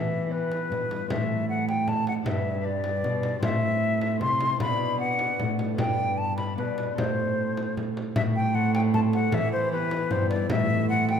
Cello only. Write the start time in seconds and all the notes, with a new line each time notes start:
Already playing: E3
0.70 G2
1.09 A2
2.25 G2
3.04 B2
3.43 A2
4.21 C3
4.60 B2
5.39 A2
5.79 G2
6.58 B2
6.97 A2
8.16 A2
9.33 E3
10.11 G2
10.49 A2